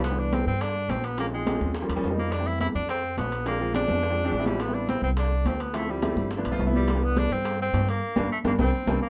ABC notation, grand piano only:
X:1
M:4/4
L:1/16
Q:1/4=211
K:C
V:1 name="Grand piano"
z [E,G,B,D]6 z8 z | [F,_A,C_D] z [F,A,C_E] z [F,A,CD]4 z [F,G,_B,D] z [F,G,B,D] z [F,G,B,E]3 | z [E,G,A,C]6 z8 z | [F,_A,CD] z [F,A,CF] z [F,A,CD]4 z [F,A,CD] z [F,A,CD] z [F,A,CE]3 |
z [G,B,CE]6 z8 z | [F,A,CE] z [F,A,CE] z [F,A,CE]4 z [F,A,B,D] z [F,A,B,F] z [F,A,B,E]3 | z [E,G,B,D]6 z8 z | z2 [G,_B,D]2 z2 [G,B,D]2 [G,B,C]2 z2 [G,B,C]2 z2 |]